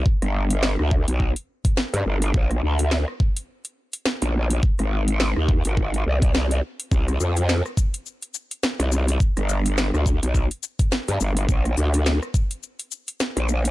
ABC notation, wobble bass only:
X:1
M:4/4
L:1/16
Q:"Swing 16ths" 1/4=105
K:Bbmix
V:1 name="Wobble bass" clef=bass
z G,,,4 D,,2 =B,,,2 z4 G,, G,,,2 | B,,,2 D,,3 z8 B,,,3 | z A,,,4 E,,2 A,,,3 C,,4 z2 | C,,2 F,,3 z8 C,,3 |
z G,,,4 D,,2 =B,,,2 z4 G,, G,,,2 | B,,,2 D,,3 z8 B,,,3 |]